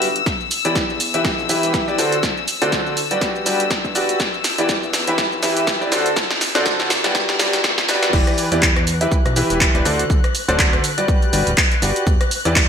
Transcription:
Already playing: analog synth bass G1, string section E6
0.02 open hi-hat
0.16 closed hi-hat
0.26 analog synth bass E1, kick, snare, closed hi-hat, shaker
0.41 shaker
0.51 open hi-hat, shaker
0.65 analog synth bass E2, grand piano E3 E4 G4 B4 D5, closed hi-hat, shaker
0.75 kick, snare, closed hi-hat, shaker
0.90 shaker
1.00 open hi-hat, shaker
1.14 grand piano E3 E4 G4 B4 E5, closed hi-hat, shaker
1.25 kick, snare, closed hi-hat, shaker
1.39 analog synth bass B1, shaker
1.49 grand piano E3 E4 G4 B4 E5, open hi-hat, shaker
1.63 analog synth bass E1, closed hi-hat, shaker
1.74 kick, snare, closed hi-hat, shaker
1.88 analog synth bass D1, grand piano E4 G4 B4 D5, shaker
1.98 analog synth bass D2, grand piano D3 F#4 A4 C5 D5, open hi-hat, shaker
2.12 closed hi-hat, shaker
2.23 analog synth bass D2, kick, snare, closed hi-hat, shaker
2.37 shaker
2.48 open hi-hat, shaker
2.62 analog synth bass D1, grand piano D3 F#4 A4 C5 D5, closed hi-hat, shaker
2.72 kick, snare, closed hi-hat, shaker
2.86 shaker
2.97 open hi-hat, shaker
3.11 grand piano G3 F#4 G4 B4 D5, closed hi-hat, shaker
3.21 kick, snare, closed hi-hat, shaker
3.36 shaker
3.46 analog synth bass G1, grand piano G3 F#4 G4 B4 D5, open hi-hat, shaker
3.60 closed hi-hat, shaker
3.71 kick, snare, closed hi-hat, shaker
3.85 analog synth bass G1, kick, shaker
3.95 grand piano F#4 G4 B4 D5, open hi-hat, shaker
4.09 closed hi-hat, shaker
4.20 analog synth bass E1, kick, snare, closed hi-hat, shaker
4.34 shaker
4.44 snare, open hi-hat, shaker
4.58 analog synth bass E2, grand piano E3 E4 G4 B4 D5, closed hi-hat, shaker
4.69 kick, snare, closed hi-hat, shaker
4.83 shaker
4.93 snare, open hi-hat, shaker
5.07 grand piano E3 E4 G4 B4 E5, closed hi-hat, shaker
5.18 kick, snare, closed hi-hat, shaker
5.32 analog synth bass B1, shaker
5.43 grand piano E3 E4 G4 B4 E5, snare, open hi-hat, shaker
5.57 analog synth bass E1, closed hi-hat, shaker
5.67 kick, snare, closed hi-hat, shaker
5.81 analog synth bass D1, grand piano E4 G4 B4 D5, shaker
5.92 analog synth bass D2, grand piano D3 F#4 A4 C5 D5, snare, open hi-hat, shaker
6.06 closed hi-hat, shaker
6.16 analog synth bass D2, kick, snare, closed hi-hat, shaker
6.31 snare, shaker
6.41 snare, open hi-hat, shaker
6.55 analog synth bass D1, grand piano D3 F#4 A4 C5 D5, snare, closed hi-hat, shaker
6.66 kick, snare, closed hi-hat, shaker
6.80 snare, shaker
6.90 snare, open hi-hat, shaker
7.04 grand piano G3 F#4 G4 B4 D5, snare, closed hi-hat, shaker
7.15 kick, snare, closed hi-hat, shaker
7.29 snare, shaker
7.39 grand piano G3 F#4 G4 B4 D5, snare, open hi-hat, shaker
7.53 analog synth bass G1, snare, closed hi-hat, shaker
7.64 kick, snare, closed hi-hat, shaker
7.78 kick, snare, shaker
7.89 grand piano F#4 G4 B4 D5, snare, open hi-hat, shaker
8.03 analog synth bass G2, snare, closed hi-hat, shaker
8.13 analog synth bass E1, grand piano E3 E4 G4 B4 D5, string section F#6, kick, crash, shaker
8.27 cross-stick, closed hi-hat, shaker
8.38 open hi-hat, shaker
8.52 analog synth bass E2, grand piano E3 E4 G4 B4 D5, closed hi-hat, shaker
8.62 kick, clap, shaker
8.76 cross-stick, closed hi-hat, shaker
8.87 open hi-hat, shaker
9.01 grand piano E3 E4 G4 B4 E5, closed hi-hat, shaker
9.12 kick, shaker
9.26 analog synth bass B1, cross-stick, closed hi-hat, shaker
9.36 grand piano E3 E4 G4 B4 E5, open hi-hat, shaker
9.50 analog synth bass E1, closed hi-hat, shaker
9.61 kick, clap, shaker
9.75 analog synth bass D1, grand piano E4 G4 B4 D5, closed hi-hat, shaker
9.85 analog synth bass D2, grand piano D3 F#4 A4 C5 D5, open hi-hat, shaker
9.99 closed hi-hat, shaker
10.10 analog synth bass D2, kick, shaker
10.24 cross-stick, closed hi-hat, shaker
10.35 open hi-hat, shaker
10.48 analog synth bass D1, grand piano D3 F#4 A4 C5 D5, closed hi-hat, shaker
10.59 kick, clap, shaker
10.73 cross-stick, closed hi-hat, shaker
10.84 open hi-hat, shaker
10.98 grand piano G3 F#4 G4 B4 D5, closed hi-hat, shaker
11.08 kick, shaker
11.22 closed hi-hat, shaker
11.33 analog synth bass G1, grand piano G3 F#4 G4 B4 D5, open hi-hat, shaker
11.47 analog synth bass D1, closed hi-hat, shaker
11.58 kick, clap, shaker
11.72 closed hi-hat, shaker
11.82 analog synth bass G1, grand piano F#4 G4 B4 D5, open hi-hat, shaker
11.96 closed hi-hat, shaker
12.07 analog synth bass E1, kick, shaker
12.21 cross-stick, closed hi-hat, shaker
12.31 open hi-hat, shaker
12.45 analog synth bass E2, grand piano E3 E4 G4 B4 D5, closed hi-hat, shaker
12.56 kick, clap, shaker

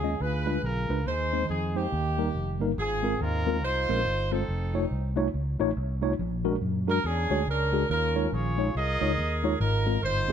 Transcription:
Already playing: fingered electric bass D#2, horn section C#4 F4 G#4
0.03 tine electric piano G#3 C#4 F4 D#5
0.20 fingered electric bass D2, tine electric piano D3, horn section F4 G#4 B4
0.46 tine electric piano G#3 D4 F4 B4
0.63 fingered electric bass B1, horn section F4 A#4
0.89 fingered electric bass C#2, tine electric piano G#3 D4 F4 B4
1.06 fingered electric bass D#2, tine electric piano D#3, horn section D#4 G#4 C5
1.33 tine electric piano G#3 C4 D#4 C5
1.49 fingered electric bass F2, horn section G#4
1.75 tine electric piano G#3 C4 D#4 C5, horn section A#3 D#4 G4
1.92 fingered electric bass D#2, tine electric piano D#3
2.18 tine electric piano G3 A#3 D#4 A#4
2.35 fingered electric bass F1
2.60 fingered electric bass G1, tine electric piano G3 A#3 D#4 A#4
2.77 fingered electric bass G#1, tine electric piano G#2, horn section C4 F4 G#4
3.03 tine electric piano G#3 C4 F4 A#4
3.21 fingered electric bass D#2, horn section D#4 F4 A#4
3.46 tine electric piano G#3 C4 F4 A#4
3.63 fingered electric bass C2, horn section D#4 F4 C5
3.89 fingered electric bass A#1, tine electric piano G#3 C4 F4 A#4
4.06 fingered electric bass G1
4.32 tine electric piano G#3 C4 F4 C5, horn section C4 D#4 A4
4.48 fingered electric bass F1
4.74 tine electric piano A3 D#4 F4 C#5
4.91 fingered electric bass C2
5.16 tine electric piano A3 D#4 F4 C#5
5.34 fingered electric bass C#2
5.60 fingered electric bass A1, tine electric piano A3 D#4 F4 C#5
5.77 fingered electric bass C2
6.02 tine electric piano A3 D#4 F4 C#5
6.19 fingered electric bass A#1, tine electric piano A#2
6.44 tine electric piano G#3 D4 F#4 A#4
6.62 fingered electric bass F#2
6.87 tine electric piano G#3 D4 F#4 A#4, horn section A#4
7.04 fingered electric bass E2, horn section C#4 D4 G#4
7.30 fingered electric bass D2, tine electric piano G#3 D4 F#4 C#5
7.47 fingered electric bass C#2, horn section C#4 D4 A#4
7.72 tine electric piano G#3 D4 F#4 G#4
7.90 fingered electric bass D#2, tine electric piano D#3, horn section C#4 F4 A#4
8.15 tine electric piano G#3 D#4 F4 C#5
8.32 fingered electric bass A#1, horn section F4 G#4 C#5
8.58 tine electric piano G#3 D#4 F4 C#5
8.75 fingered electric bass C2, horn section G#4 A#4 D#5
9.01 fingered electric bass C#2, tine electric piano G#3 D#4 F4 C#5
9.18 fingered electric bass D#2
9.44 tine electric piano G#3 D#4 F4 C#5
9.60 fingered electric bass G#1, tine electric piano G#2, horn section D#4 F4 A#4
9.86 tine electric piano G#3 C4 F4 A#4
10.03 fingered electric bass G1, horn section D#4 F4 C5
10.29 tine electric piano G#3 C4 F4

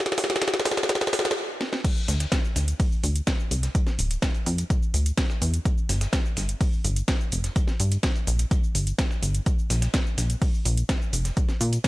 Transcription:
0.00 snare
0.06 snare, closed hi-hat
0.12 snare
0.18 analog synth bass A2, snare, open hi-hat
0.24 snare
0.30 snare, closed hi-hat
0.36 snare
0.42 kick, snare, closed hi-hat
0.48 snare
0.54 snare, closed hi-hat
0.60 snare
0.65 analog synth bass C2, snare, closed hi-hat, open hi-hat
0.71 snare
0.77 snare, closed hi-hat
0.83 snare
0.89 kick, snare, closed hi-hat
0.95 snare
1.01 snare, closed hi-hat
1.07 snare
1.13 analog synth bass A1, snare, closed hi-hat, open hi-hat
1.19 snare
1.25 snare, closed hi-hat
1.31 snare
1.61 snare
1.73 snare
1.84 kick, closed hi-hat, crash, shaker
1.97 shaker
2.08 analog synth bass D2, snare, closed hi-hat, open hi-hat, shaker
2.20 snare, closed hi-hat, shaker
2.32 kick, snare, closed hi-hat, shaker
2.44 shaker
2.56 analog synth bass D2, snare, closed hi-hat, open hi-hat, shaker
2.68 closed hi-hat, shaker
2.80 kick, closed hi-hat, open hi-hat, shaker
2.92 shaker
3.04 analog synth bass D2, closed hi-hat, open hi-hat, shaker
3.16 closed hi-hat, shaker
3.27 kick, snare, closed hi-hat, shaker
3.40 shaker
3.51 analog synth bass C2, closed hi-hat, open hi-hat, shaker
3.63 snare, closed hi-hat, shaker
3.75 kick, closed hi-hat, shaker
3.87 snare, shaker
3.99 analog synth bass D1, closed hi-hat, open hi-hat, shaker
4.11 closed hi-hat, shaker
4.22 kick, snare, closed hi-hat, shaker
4.35 closed hi-hat, shaker
4.46 analog synth bass F2, closed hi-hat, open hi-hat, shaker
4.58 closed hi-hat, shaker
4.70 kick, closed hi-hat, shaker
4.83 shaker
4.94 analog synth bass D2, closed hi-hat, open hi-hat, shaker
5.06 closed hi-hat, shaker
5.17 kick, snare, closed hi-hat, shaker
5.30 snare, shaker
5.42 analog synth bass E2, closed hi-hat, open hi-hat, shaker
5.54 closed hi-hat, shaker
5.65 kick, closed hi-hat, shaker
5.78 shaker
5.89 analog synth bass G1, snare, closed hi-hat, open hi-hat, shaker
6.01 snare, closed hi-hat, shaker
6.13 kick, snare, closed hi-hat, shaker
6.25 shaker
6.37 analog synth bass G1, snare, closed hi-hat, open hi-hat, shaker
6.49 closed hi-hat, shaker
6.61 kick, closed hi-hat, open hi-hat, shaker
6.73 shaker
6.84 analog synth bass G1, closed hi-hat, open hi-hat, shaker
6.96 closed hi-hat, shaker
7.08 kick, snare, closed hi-hat, shaker
7.21 shaker
7.32 analog synth bass F1, closed hi-hat, open hi-hat, shaker
7.44 snare, closed hi-hat, shaker
7.56 kick, closed hi-hat, shaker
7.67 snare, shaker
7.80 analog synth bass G2, closed hi-hat, open hi-hat, shaker
7.92 closed hi-hat, shaker
8.03 kick, snare, closed hi-hat, shaker
8.15 closed hi-hat, shaker
8.27 analog synth bass A#1, closed hi-hat, open hi-hat, shaker
8.39 closed hi-hat, shaker
8.51 kick, closed hi-hat, shaker
8.63 shaker
8.75 analog synth bass G1, closed hi-hat, open hi-hat, shaker
8.87 closed hi-hat, shaker
8.98 kick, snare, closed hi-hat, shaker
9.11 snare, shaker
9.23 analog synth bass G1, closed hi-hat, open hi-hat, shaker
9.35 closed hi-hat, shaker
9.46 kick, closed hi-hat, shaker
9.59 shaker
9.70 analog synth bass A#1, snare, closed hi-hat, open hi-hat, shaker
9.82 snare, closed hi-hat, shaker
9.94 kick, snare, closed hi-hat, shaker
10.06 shaker
10.18 analog synth bass A#1, snare, closed hi-hat, open hi-hat, shaker
10.30 closed hi-hat, shaker
10.42 kick, closed hi-hat, open hi-hat, shaker
10.54 shaker
10.65 analog synth bass A#1, closed hi-hat, open hi-hat, shaker
10.77 closed hi-hat, shaker
10.89 kick, snare, closed hi-hat, shaker
11.02 shaker
11.13 analog synth bass F1, closed hi-hat, open hi-hat, shaker
11.25 snare, closed hi-hat, shaker
11.37 kick, closed hi-hat, shaker
11.49 snare, shaker
11.61 analog synth bass A#2, closed hi-hat, open hi-hat, shaker
11.73 closed hi-hat, shaker
11.84 kick, snare, closed hi-hat

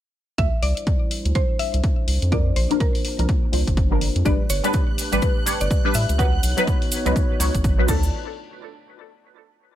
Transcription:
0.38 analog synth bass D2, analog synth pad G3 D4 E4 C5, synth pluck E5, kick, closed hi-hat
0.63 analog synth bass C2, synth pluck D5, open hi-hat
0.77 closed hi-hat
0.87 kick, closed hi-hat
1.11 open hi-hat
1.25 analog synth bass D2, closed hi-hat
1.35 synth pluck C5, kick, closed hi-hat
1.59 synth pluck E5, open hi-hat
1.74 analog synth bass C2, closed hi-hat
1.84 kick, closed hi-hat
2.08 analog synth bass C2, analog synth pad A#3 F4, open hi-hat
2.22 analog synth bass F2, closed hi-hat
2.32 synth stab F3 D4 A#4, synth pluck D5, kick, closed hi-hat
2.56 analog synth bass A#1, synth pluck C5, open hi-hat
2.70 synth stab F3 D4 A#4, closed hi-hat
2.80 synth pluck A#4, kick, closed hi-hat
2.95 open hi-hat
3.05 open hi-hat
3.19 analog synth bass C2, synth stab F3 D4 A#4, closed hi-hat
3.29 kick, closed hi-hat
3.52 analog synth bass C2, synth stab F3 D4 C5, open hi-hat
3.67 analog synth bass G1, kick, closed hi-hat
3.77 kick, closed hi-hat
3.91 synth stab F3 D4 A#4
4.01 open hi-hat
4.16 analog synth bass F2, closed hi-hat
4.25 analog synth bass A1, synth stab G3 D4 B4, analog synth pad A3 G4 B4, synth pluck D5, string machine F#6, kick, closed hi-hat, cabasa
4.50 analog synth bass G1, synth pluck C#5, open hi-hat, cabasa
4.64 synth stab G3 D4 B4, closed hi-hat, cabasa
4.73 kick, closed hi-hat, cabasa
4.98 open hi-hat, cabasa
5.12 analog synth bass A1, synth stab G3 D4 B4, closed hi-hat, cabasa
5.22 synth pluck B4, kick, closed hi-hat, cabasa
5.46 synth stab G3 D4 C#5, open hi-hat, cabasa
5.61 analog synth bass G1, synth pluck D5, closed hi-hat, cabasa
5.71 kick, closed hi-hat, cabasa
5.85 synth stab G3 D4 B4
5.94 analog synth bass A2, synth pluck E5, open hi-hat, cabasa
6.09 analog synth bass C#2, closed hi-hat, cabasa
6.18 synth stab F#3 D#4 B4, analog synth pad B3 D#4 F#4 C#5, synth pluck F#5, kick, closed hi-hat, cabasa
6.43 analog synth bass B1, open hi-hat, cabasa
6.57 synth stab F#3 D#4 B4, closed hi-hat, cabasa
6.67 kick, closed hi-hat, cabasa
6.82 open hi-hat
6.92 open hi-hat, cabasa
7.06 analog synth bass C#2, synth stab F#3 D#4 B4, closed hi-hat, cabasa
7.16 kick, closed hi-hat, cabasa
7.40 analog synth bass C#2, synth stab F#3 D#4 C#5, open hi-hat, cabasa
7.55 analog synth bass G#1, kick, closed hi-hat, cabasa
7.64 kick, closed hi-hat, cabasa
7.78 analog synth bass B1, synth stab F#3 D#4 B4
7.87 analog synth bass D2, synth stab F3 D4 A4, analog synth pad A3 D4 F4 D5, synth pluck A5, kick, crash, cabasa
8.03 cabasa

